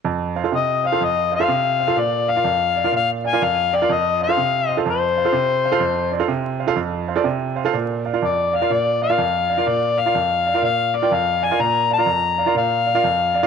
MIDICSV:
0, 0, Header, 1, 3, 480
1, 0, Start_track
1, 0, Tempo, 480769
1, 51, Time_signature, 4, 2, 24, 8
1, 13447, End_track
2, 0, Start_track
2, 0, Title_t, "Harmonica"
2, 0, Program_c, 0, 22
2, 554, Note_on_c, 0, 75, 74
2, 870, Note_on_c, 0, 77, 74
2, 885, Note_off_c, 0, 75, 0
2, 1041, Note_on_c, 0, 75, 87
2, 1056, Note_off_c, 0, 77, 0
2, 1343, Note_off_c, 0, 75, 0
2, 1357, Note_on_c, 0, 77, 73
2, 1991, Note_on_c, 0, 74, 88
2, 2006, Note_off_c, 0, 77, 0
2, 2301, Note_on_c, 0, 77, 76
2, 2316, Note_off_c, 0, 74, 0
2, 2937, Note_off_c, 0, 77, 0
2, 2957, Note_on_c, 0, 77, 87
2, 3094, Note_off_c, 0, 77, 0
2, 3270, Note_on_c, 0, 80, 86
2, 3434, Note_on_c, 0, 77, 92
2, 3449, Note_off_c, 0, 80, 0
2, 3753, Note_on_c, 0, 74, 79
2, 3768, Note_off_c, 0, 77, 0
2, 3919, Note_on_c, 0, 75, 91
2, 3934, Note_off_c, 0, 74, 0
2, 4222, Note_off_c, 0, 75, 0
2, 4230, Note_on_c, 0, 77, 82
2, 4669, Note_off_c, 0, 77, 0
2, 4669, Note_on_c, 0, 75, 82
2, 4822, Note_off_c, 0, 75, 0
2, 4888, Note_on_c, 0, 72, 76
2, 6268, Note_off_c, 0, 72, 0
2, 8221, Note_on_c, 0, 74, 67
2, 8543, Note_on_c, 0, 77, 71
2, 8558, Note_off_c, 0, 74, 0
2, 8707, Note_on_c, 0, 74, 82
2, 8722, Note_off_c, 0, 77, 0
2, 9010, Note_off_c, 0, 74, 0
2, 9016, Note_on_c, 0, 77, 70
2, 9664, Note_on_c, 0, 74, 78
2, 9679, Note_off_c, 0, 77, 0
2, 9988, Note_on_c, 0, 77, 80
2, 10003, Note_off_c, 0, 74, 0
2, 10621, Note_off_c, 0, 77, 0
2, 10631, Note_on_c, 0, 77, 92
2, 10944, Note_on_c, 0, 74, 78
2, 10959, Note_off_c, 0, 77, 0
2, 11117, Note_on_c, 0, 77, 89
2, 11132, Note_off_c, 0, 74, 0
2, 11426, Note_on_c, 0, 80, 85
2, 11441, Note_off_c, 0, 77, 0
2, 11595, Note_on_c, 0, 82, 102
2, 11610, Note_off_c, 0, 80, 0
2, 11901, Note_off_c, 0, 82, 0
2, 11917, Note_on_c, 0, 82, 95
2, 12508, Note_off_c, 0, 82, 0
2, 12556, Note_on_c, 0, 77, 86
2, 13447, Note_off_c, 0, 77, 0
2, 13447, End_track
3, 0, Start_track
3, 0, Title_t, "Upright piano"
3, 0, Program_c, 1, 0
3, 45, Note_on_c, 1, 41, 71
3, 354, Note_on_c, 1, 72, 37
3, 362, Note_on_c, 1, 77, 49
3, 402, Note_off_c, 1, 72, 0
3, 406, Note_off_c, 1, 77, 0
3, 434, Note_off_c, 1, 41, 0
3, 435, Note_on_c, 1, 65, 54
3, 439, Note_on_c, 1, 72, 50
3, 441, Note_on_c, 1, 69, 47
3, 441, Note_on_c, 1, 77, 54
3, 518, Note_on_c, 1, 48, 56
3, 524, Note_off_c, 1, 65, 0
3, 526, Note_off_c, 1, 72, 0
3, 527, Note_off_c, 1, 69, 0
3, 527, Note_off_c, 1, 77, 0
3, 835, Note_on_c, 1, 72, 36
3, 848, Note_on_c, 1, 77, 43
3, 882, Note_off_c, 1, 72, 0
3, 889, Note_off_c, 1, 77, 0
3, 910, Note_off_c, 1, 48, 0
3, 921, Note_on_c, 1, 65, 58
3, 921, Note_on_c, 1, 72, 48
3, 924, Note_on_c, 1, 69, 56
3, 926, Note_on_c, 1, 77, 60
3, 1007, Note_off_c, 1, 65, 0
3, 1007, Note_off_c, 1, 72, 0
3, 1008, Note_off_c, 1, 69, 0
3, 1008, Note_on_c, 1, 41, 58
3, 1009, Note_off_c, 1, 77, 0
3, 1312, Note_on_c, 1, 72, 41
3, 1319, Note_on_c, 1, 77, 44
3, 1361, Note_off_c, 1, 72, 0
3, 1365, Note_off_c, 1, 77, 0
3, 1393, Note_on_c, 1, 65, 59
3, 1395, Note_off_c, 1, 41, 0
3, 1397, Note_on_c, 1, 69, 57
3, 1400, Note_on_c, 1, 72, 55
3, 1401, Note_on_c, 1, 77, 64
3, 1480, Note_on_c, 1, 48, 68
3, 1483, Note_off_c, 1, 65, 0
3, 1485, Note_off_c, 1, 69, 0
3, 1487, Note_off_c, 1, 72, 0
3, 1487, Note_off_c, 1, 77, 0
3, 1793, Note_on_c, 1, 72, 38
3, 1801, Note_on_c, 1, 77, 43
3, 1842, Note_off_c, 1, 72, 0
3, 1846, Note_off_c, 1, 77, 0
3, 1871, Note_off_c, 1, 48, 0
3, 1871, Note_on_c, 1, 65, 65
3, 1872, Note_on_c, 1, 72, 50
3, 1873, Note_on_c, 1, 69, 55
3, 1875, Note_on_c, 1, 77, 68
3, 1956, Note_on_c, 1, 46, 63
3, 1962, Note_off_c, 1, 65, 0
3, 1962, Note_off_c, 1, 72, 0
3, 1963, Note_off_c, 1, 69, 0
3, 1964, Note_off_c, 1, 77, 0
3, 2279, Note_on_c, 1, 74, 36
3, 2289, Note_on_c, 1, 77, 39
3, 2324, Note_off_c, 1, 74, 0
3, 2329, Note_off_c, 1, 77, 0
3, 2349, Note_off_c, 1, 46, 0
3, 2357, Note_on_c, 1, 65, 49
3, 2359, Note_on_c, 1, 70, 51
3, 2360, Note_on_c, 1, 74, 47
3, 2363, Note_on_c, 1, 77, 63
3, 2438, Note_on_c, 1, 41, 59
3, 2445, Note_off_c, 1, 65, 0
3, 2446, Note_off_c, 1, 70, 0
3, 2446, Note_off_c, 1, 74, 0
3, 2448, Note_off_c, 1, 77, 0
3, 2755, Note_on_c, 1, 74, 38
3, 2761, Note_on_c, 1, 77, 43
3, 2803, Note_off_c, 1, 74, 0
3, 2805, Note_off_c, 1, 77, 0
3, 2830, Note_off_c, 1, 41, 0
3, 2839, Note_on_c, 1, 65, 58
3, 2839, Note_on_c, 1, 70, 52
3, 2841, Note_on_c, 1, 74, 53
3, 2848, Note_on_c, 1, 77, 64
3, 2917, Note_on_c, 1, 46, 54
3, 2926, Note_off_c, 1, 65, 0
3, 2926, Note_off_c, 1, 70, 0
3, 2927, Note_off_c, 1, 74, 0
3, 2930, Note_off_c, 1, 77, 0
3, 3237, Note_on_c, 1, 74, 37
3, 3244, Note_on_c, 1, 77, 44
3, 3283, Note_off_c, 1, 74, 0
3, 3287, Note_off_c, 1, 77, 0
3, 3309, Note_off_c, 1, 46, 0
3, 3322, Note_on_c, 1, 70, 59
3, 3325, Note_on_c, 1, 65, 60
3, 3327, Note_on_c, 1, 74, 58
3, 3332, Note_on_c, 1, 77, 67
3, 3407, Note_off_c, 1, 70, 0
3, 3409, Note_off_c, 1, 65, 0
3, 3410, Note_off_c, 1, 74, 0
3, 3411, Note_on_c, 1, 41, 63
3, 3412, Note_off_c, 1, 77, 0
3, 3722, Note_on_c, 1, 74, 43
3, 3732, Note_on_c, 1, 79, 45
3, 3766, Note_off_c, 1, 74, 0
3, 3771, Note_off_c, 1, 79, 0
3, 3797, Note_off_c, 1, 41, 0
3, 3809, Note_on_c, 1, 70, 56
3, 3810, Note_on_c, 1, 65, 63
3, 3815, Note_on_c, 1, 74, 57
3, 3816, Note_on_c, 1, 77, 66
3, 3886, Note_on_c, 1, 41, 64
3, 3890, Note_off_c, 1, 70, 0
3, 3891, Note_off_c, 1, 65, 0
3, 3894, Note_off_c, 1, 74, 0
3, 3894, Note_off_c, 1, 77, 0
3, 4196, Note_on_c, 1, 72, 34
3, 4207, Note_on_c, 1, 77, 40
3, 4243, Note_off_c, 1, 72, 0
3, 4248, Note_off_c, 1, 77, 0
3, 4274, Note_off_c, 1, 41, 0
3, 4278, Note_on_c, 1, 65, 56
3, 4281, Note_on_c, 1, 69, 48
3, 4284, Note_on_c, 1, 72, 54
3, 4285, Note_on_c, 1, 77, 59
3, 4365, Note_off_c, 1, 65, 0
3, 4365, Note_on_c, 1, 48, 63
3, 4367, Note_off_c, 1, 69, 0
3, 4368, Note_off_c, 1, 72, 0
3, 4369, Note_off_c, 1, 77, 0
3, 4679, Note_on_c, 1, 72, 39
3, 4685, Note_on_c, 1, 77, 38
3, 4724, Note_off_c, 1, 72, 0
3, 4727, Note_off_c, 1, 77, 0
3, 4753, Note_off_c, 1, 48, 0
3, 4762, Note_on_c, 1, 65, 62
3, 4768, Note_on_c, 1, 69, 59
3, 4769, Note_on_c, 1, 72, 54
3, 4773, Note_on_c, 1, 77, 62
3, 4847, Note_off_c, 1, 65, 0
3, 4850, Note_off_c, 1, 69, 0
3, 4850, Note_off_c, 1, 72, 0
3, 4850, Note_on_c, 1, 41, 60
3, 4852, Note_off_c, 1, 77, 0
3, 5159, Note_on_c, 1, 72, 40
3, 5170, Note_on_c, 1, 77, 48
3, 5204, Note_off_c, 1, 72, 0
3, 5209, Note_off_c, 1, 77, 0
3, 5236, Note_off_c, 1, 41, 0
3, 5239, Note_on_c, 1, 65, 58
3, 5242, Note_on_c, 1, 69, 58
3, 5247, Note_on_c, 1, 72, 53
3, 5247, Note_on_c, 1, 77, 61
3, 5317, Note_on_c, 1, 48, 66
3, 5326, Note_off_c, 1, 65, 0
3, 5327, Note_off_c, 1, 69, 0
3, 5329, Note_off_c, 1, 72, 0
3, 5329, Note_off_c, 1, 77, 0
3, 5634, Note_on_c, 1, 72, 50
3, 5642, Note_on_c, 1, 77, 47
3, 5681, Note_off_c, 1, 72, 0
3, 5685, Note_off_c, 1, 77, 0
3, 5706, Note_on_c, 1, 69, 67
3, 5707, Note_on_c, 1, 65, 72
3, 5709, Note_off_c, 1, 48, 0
3, 5712, Note_on_c, 1, 77, 82
3, 5714, Note_on_c, 1, 72, 69
3, 5789, Note_on_c, 1, 41, 69
3, 5799, Note_off_c, 1, 65, 0
3, 5799, Note_off_c, 1, 69, 0
3, 5802, Note_off_c, 1, 77, 0
3, 5803, Note_off_c, 1, 72, 0
3, 6106, Note_on_c, 1, 72, 46
3, 6113, Note_on_c, 1, 74, 45
3, 6157, Note_off_c, 1, 72, 0
3, 6161, Note_off_c, 1, 74, 0
3, 6184, Note_off_c, 1, 41, 0
3, 6184, Note_on_c, 1, 65, 64
3, 6184, Note_on_c, 1, 72, 57
3, 6187, Note_on_c, 1, 69, 62
3, 6187, Note_on_c, 1, 77, 68
3, 6271, Note_on_c, 1, 48, 68
3, 6278, Note_off_c, 1, 65, 0
3, 6278, Note_off_c, 1, 72, 0
3, 6279, Note_off_c, 1, 69, 0
3, 6279, Note_off_c, 1, 77, 0
3, 6582, Note_on_c, 1, 72, 41
3, 6590, Note_on_c, 1, 77, 48
3, 6635, Note_off_c, 1, 72, 0
3, 6639, Note_off_c, 1, 77, 0
3, 6659, Note_on_c, 1, 65, 68
3, 6665, Note_off_c, 1, 48, 0
3, 6666, Note_on_c, 1, 69, 70
3, 6666, Note_on_c, 1, 72, 62
3, 6667, Note_on_c, 1, 77, 83
3, 6749, Note_on_c, 1, 41, 73
3, 6755, Note_off_c, 1, 65, 0
3, 6758, Note_off_c, 1, 69, 0
3, 6758, Note_off_c, 1, 72, 0
3, 6759, Note_off_c, 1, 77, 0
3, 7068, Note_on_c, 1, 72, 46
3, 7072, Note_on_c, 1, 77, 49
3, 7118, Note_off_c, 1, 72, 0
3, 7120, Note_off_c, 1, 77, 0
3, 7143, Note_on_c, 1, 65, 73
3, 7144, Note_off_c, 1, 41, 0
3, 7144, Note_on_c, 1, 72, 58
3, 7146, Note_on_c, 1, 69, 64
3, 7151, Note_on_c, 1, 74, 75
3, 7227, Note_on_c, 1, 48, 75
3, 7237, Note_off_c, 1, 65, 0
3, 7238, Note_off_c, 1, 72, 0
3, 7239, Note_off_c, 1, 69, 0
3, 7241, Note_off_c, 1, 74, 0
3, 7542, Note_on_c, 1, 72, 47
3, 7552, Note_on_c, 1, 77, 49
3, 7595, Note_off_c, 1, 72, 0
3, 7600, Note_off_c, 1, 77, 0
3, 7623, Note_off_c, 1, 48, 0
3, 7634, Note_on_c, 1, 65, 68
3, 7634, Note_on_c, 1, 69, 69
3, 7641, Note_on_c, 1, 72, 61
3, 7642, Note_on_c, 1, 77, 81
3, 7721, Note_on_c, 1, 46, 75
3, 7723, Note_off_c, 1, 65, 0
3, 7723, Note_off_c, 1, 69, 0
3, 7726, Note_off_c, 1, 72, 0
3, 7726, Note_off_c, 1, 77, 0
3, 8037, Note_on_c, 1, 74, 40
3, 8044, Note_on_c, 1, 77, 46
3, 8082, Note_off_c, 1, 74, 0
3, 8086, Note_off_c, 1, 77, 0
3, 8111, Note_off_c, 1, 46, 0
3, 8122, Note_on_c, 1, 65, 59
3, 8122, Note_on_c, 1, 70, 51
3, 8124, Note_on_c, 1, 74, 48
3, 8126, Note_on_c, 1, 77, 61
3, 8206, Note_off_c, 1, 65, 0
3, 8207, Note_off_c, 1, 70, 0
3, 8208, Note_off_c, 1, 74, 0
3, 8208, Note_off_c, 1, 77, 0
3, 8208, Note_on_c, 1, 41, 56
3, 8517, Note_on_c, 1, 74, 39
3, 8519, Note_on_c, 1, 77, 41
3, 8562, Note_off_c, 1, 74, 0
3, 8564, Note_off_c, 1, 77, 0
3, 8594, Note_off_c, 1, 41, 0
3, 8599, Note_on_c, 1, 65, 59
3, 8600, Note_on_c, 1, 70, 55
3, 8604, Note_on_c, 1, 74, 51
3, 8608, Note_on_c, 1, 77, 66
3, 8685, Note_off_c, 1, 65, 0
3, 8686, Note_off_c, 1, 70, 0
3, 8687, Note_off_c, 1, 74, 0
3, 8687, Note_on_c, 1, 46, 58
3, 8690, Note_off_c, 1, 77, 0
3, 9001, Note_on_c, 1, 74, 43
3, 9005, Note_on_c, 1, 77, 46
3, 9045, Note_off_c, 1, 74, 0
3, 9047, Note_off_c, 1, 77, 0
3, 9074, Note_off_c, 1, 46, 0
3, 9081, Note_on_c, 1, 65, 59
3, 9082, Note_on_c, 1, 70, 54
3, 9082, Note_on_c, 1, 74, 53
3, 9088, Note_on_c, 1, 77, 65
3, 9165, Note_on_c, 1, 41, 67
3, 9166, Note_off_c, 1, 65, 0
3, 9167, Note_off_c, 1, 70, 0
3, 9167, Note_off_c, 1, 74, 0
3, 9170, Note_off_c, 1, 77, 0
3, 9477, Note_on_c, 1, 74, 36
3, 9484, Note_on_c, 1, 77, 47
3, 9523, Note_off_c, 1, 74, 0
3, 9526, Note_off_c, 1, 77, 0
3, 9553, Note_off_c, 1, 41, 0
3, 9561, Note_on_c, 1, 65, 59
3, 9561, Note_on_c, 1, 70, 58
3, 9566, Note_on_c, 1, 74, 55
3, 9568, Note_on_c, 1, 77, 63
3, 9646, Note_off_c, 1, 65, 0
3, 9647, Note_off_c, 1, 70, 0
3, 9649, Note_off_c, 1, 74, 0
3, 9650, Note_off_c, 1, 77, 0
3, 9651, Note_on_c, 1, 46, 63
3, 9960, Note_on_c, 1, 74, 36
3, 9962, Note_on_c, 1, 77, 42
3, 10004, Note_off_c, 1, 74, 0
3, 10005, Note_off_c, 1, 77, 0
3, 10036, Note_off_c, 1, 46, 0
3, 10042, Note_on_c, 1, 65, 56
3, 10044, Note_on_c, 1, 70, 51
3, 10047, Note_on_c, 1, 74, 50
3, 10051, Note_on_c, 1, 77, 68
3, 10127, Note_off_c, 1, 65, 0
3, 10128, Note_off_c, 1, 70, 0
3, 10129, Note_off_c, 1, 74, 0
3, 10132, Note_off_c, 1, 77, 0
3, 10132, Note_on_c, 1, 41, 58
3, 10449, Note_on_c, 1, 74, 36
3, 10454, Note_on_c, 1, 77, 44
3, 10489, Note_off_c, 1, 74, 0
3, 10492, Note_off_c, 1, 77, 0
3, 10517, Note_off_c, 1, 41, 0
3, 10523, Note_on_c, 1, 65, 56
3, 10529, Note_on_c, 1, 70, 55
3, 10533, Note_on_c, 1, 77, 66
3, 10535, Note_on_c, 1, 74, 55
3, 10603, Note_on_c, 1, 46, 58
3, 10608, Note_off_c, 1, 65, 0
3, 10611, Note_off_c, 1, 70, 0
3, 10613, Note_off_c, 1, 77, 0
3, 10614, Note_off_c, 1, 74, 0
3, 10921, Note_on_c, 1, 74, 43
3, 10928, Note_on_c, 1, 77, 42
3, 10965, Note_off_c, 1, 74, 0
3, 10969, Note_off_c, 1, 77, 0
3, 10993, Note_off_c, 1, 46, 0
3, 11003, Note_on_c, 1, 70, 56
3, 11005, Note_on_c, 1, 65, 63
3, 11008, Note_on_c, 1, 74, 56
3, 11011, Note_on_c, 1, 79, 67
3, 11088, Note_off_c, 1, 70, 0
3, 11089, Note_off_c, 1, 65, 0
3, 11091, Note_off_c, 1, 74, 0
3, 11092, Note_off_c, 1, 79, 0
3, 11093, Note_on_c, 1, 41, 63
3, 11402, Note_on_c, 1, 74, 42
3, 11411, Note_on_c, 1, 77, 44
3, 11446, Note_off_c, 1, 74, 0
3, 11451, Note_off_c, 1, 77, 0
3, 11479, Note_off_c, 1, 41, 0
3, 11493, Note_on_c, 1, 65, 64
3, 11494, Note_on_c, 1, 74, 60
3, 11495, Note_on_c, 1, 70, 59
3, 11497, Note_on_c, 1, 77, 69
3, 11573, Note_off_c, 1, 65, 0
3, 11574, Note_off_c, 1, 70, 0
3, 11574, Note_off_c, 1, 74, 0
3, 11576, Note_off_c, 1, 77, 0
3, 11576, Note_on_c, 1, 46, 68
3, 11883, Note_on_c, 1, 74, 39
3, 11893, Note_on_c, 1, 77, 40
3, 11927, Note_off_c, 1, 74, 0
3, 11932, Note_off_c, 1, 77, 0
3, 11961, Note_off_c, 1, 46, 0
3, 11961, Note_on_c, 1, 65, 56
3, 11963, Note_on_c, 1, 70, 52
3, 11966, Note_on_c, 1, 74, 56
3, 11971, Note_on_c, 1, 77, 60
3, 12042, Note_on_c, 1, 41, 61
3, 12048, Note_off_c, 1, 65, 0
3, 12049, Note_off_c, 1, 70, 0
3, 12050, Note_off_c, 1, 74, 0
3, 12053, Note_off_c, 1, 77, 0
3, 12362, Note_on_c, 1, 74, 39
3, 12365, Note_on_c, 1, 77, 44
3, 12407, Note_off_c, 1, 74, 0
3, 12409, Note_off_c, 1, 77, 0
3, 12433, Note_off_c, 1, 41, 0
3, 12441, Note_on_c, 1, 65, 66
3, 12447, Note_on_c, 1, 70, 59
3, 12450, Note_on_c, 1, 74, 54
3, 12452, Note_on_c, 1, 77, 65
3, 12528, Note_off_c, 1, 65, 0
3, 12528, Note_on_c, 1, 46, 62
3, 12531, Note_off_c, 1, 70, 0
3, 12533, Note_off_c, 1, 74, 0
3, 12534, Note_off_c, 1, 77, 0
3, 12843, Note_on_c, 1, 74, 39
3, 12852, Note_on_c, 1, 77, 44
3, 12888, Note_off_c, 1, 74, 0
3, 12892, Note_off_c, 1, 77, 0
3, 12917, Note_off_c, 1, 46, 0
3, 12924, Note_on_c, 1, 65, 62
3, 12929, Note_on_c, 1, 70, 54
3, 12929, Note_on_c, 1, 74, 56
3, 12932, Note_on_c, 1, 77, 70
3, 13010, Note_off_c, 1, 65, 0
3, 13013, Note_off_c, 1, 70, 0
3, 13013, Note_off_c, 1, 74, 0
3, 13014, Note_off_c, 1, 77, 0
3, 13017, Note_on_c, 1, 41, 65
3, 13323, Note_on_c, 1, 74, 49
3, 13331, Note_on_c, 1, 77, 49
3, 13368, Note_off_c, 1, 74, 0
3, 13372, Note_off_c, 1, 77, 0
3, 13402, Note_off_c, 1, 41, 0
3, 13409, Note_on_c, 1, 65, 75
3, 13409, Note_on_c, 1, 70, 66
3, 13411, Note_on_c, 1, 74, 66
3, 13412, Note_on_c, 1, 77, 80
3, 13447, Note_off_c, 1, 65, 0
3, 13447, Note_off_c, 1, 70, 0
3, 13447, Note_off_c, 1, 74, 0
3, 13447, Note_off_c, 1, 77, 0
3, 13447, End_track
0, 0, End_of_file